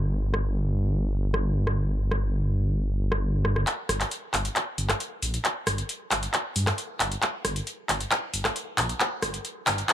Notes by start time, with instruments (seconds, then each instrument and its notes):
Already playing: detuned saw bass G1
0.34 cross-stick
1.34 cross-stick
1.67 cross-stick
2.11 cross-stick
3.12 cross-stick
3.45 cross-stick
3.56 cross-stick
3.67 clap, closed hi-hat
3.89 detuned saw bass G1, cross-stick, open hi-hat
4.01 clap, closed hi-hat
4.11 closed hi-hat
4.34 detuned saw bass G1, clap, open hi-hat
4.45 closed hi-hat
4.56 clap, closed hi-hat
4.78 detuned saw bass G1, open hi-hat
4.89 cross-stick, clap, closed hi-hat
5.00 closed hi-hat
5.22 detuned saw bass A#1, open hi-hat
5.34 closed hi-hat
5.45 clap, closed hi-hat
5.67 detuned saw bass G1, cross-stick, open hi-hat
5.78 closed hi-hat
5.89 closed hi-hat
6.11 detuned saw bass G1, clap, open hi-hat
6.23 closed hi-hat
6.34 clap, closed hi-hat
6.56 detuned saw bass G2, open hi-hat
6.67 cross-stick, clap, closed hi-hat
6.78 closed hi-hat
7.00 detuned saw bass G1, clap, open hi-hat
7.12 closed hi-hat
7.22 clap, closed hi-hat
7.45 detuned saw bass G1, cross-stick, open hi-hat
7.56 closed hi-hat
7.67 closed hi-hat
7.89 detuned saw bass G1, clap, open hi-hat
8.01 closed hi-hat
8.11 clap, closed hi-hat
8.34 detuned saw bass G1, open hi-hat
8.45 cross-stick, clap, closed hi-hat
8.56 closed hi-hat
8.78 detuned saw bass A#1, clap, open hi-hat
8.89 closed hi-hat
9.00 clap, closed hi-hat
9.22 detuned saw bass G1, cross-stick, open hi-hat
9.34 closed hi-hat
9.45 closed hi-hat
9.67 detuned saw bass G1, clap, open hi-hat
9.78 closed hi-hat
9.89 clap, closed hi-hat